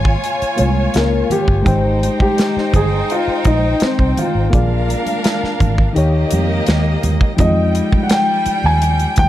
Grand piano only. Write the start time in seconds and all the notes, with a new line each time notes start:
0.96 A#3
1.32 G4
2.22 G4
2.76 G#4
3.12 F4
3.47 D#4
3.83 C4
4.19 F4
7.40 D#5
8.03 F#5
8.12 G5
8.66 G#5
9.19 G5